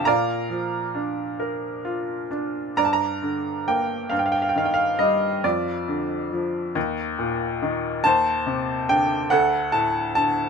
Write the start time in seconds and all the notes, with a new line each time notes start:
0.05 A#2 D5 F5 A#5
0.50 F3
0.95 D4
1.40 A#4
1.85 F4
2.31 D4
2.77 G2 D5 A#5
2.85 A5
2.93 A#5
3.22 D3
3.68 A#3 G5
4.10 G2 F5
4.19 G5
4.26 F5
4.32 G5
4.42 F5
4.49 G5
4.56 D#3 F5
4.66 G5
4.74 F5
4.99 G3 D#5
5.44 F2 F4 D5
5.88 D3
6.32 F3
6.75 D#2
7.19 A#2
7.62 D#3
8.04 D#2 C5 A5
8.46 C3
8.89 D3 G5
9.30 D2 A4 F#5
9.72 A2 A5
10.15 D3 A5